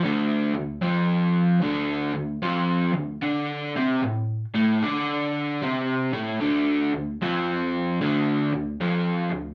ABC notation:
X:1
M:4/4
L:1/8
Q:"Swing" 1/4=75
K:Ador
V:1 name="Overdriven electric guitar" clef=bass
[D,,D,] D,, [=F,,=F,]2 [D,,D,] D,, [F,,F,] D,, | [D,D] [C,C] A,, [A,,A,] [D,D]2 [C,C] [A,,A,] | [D,,D,] D,, [=F,,=F,]2 [D,,D,] D,, [F,,F,] D,, |]